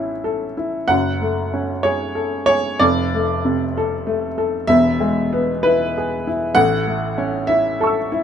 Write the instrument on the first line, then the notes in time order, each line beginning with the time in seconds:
upright piano
Already playing: A1 A2 A3 C#4 E4 E5
0.24 A4
0.57 E4
0.88 F#1 F#2 F#5
1.22 A3
1.54 C#4
1.83 G#4 C#5
2.15 A4
2.46 G#4 C#5
2.79 F1 F2 D5
3.14 A3
3.45 C3
3.77 A4
4.07 A3
4.38 A4
4.67 E1 E2 E5
5.00 G#3
5.33 B3
5.63 E4 B4
5.98 G#4
6.27 E4
6.55 A1 A2 F#5
6.87 A3
7.18 C#4
7.47 E4 E5
7.81 A4 A5 C#6
7.87 E6
8.12 E4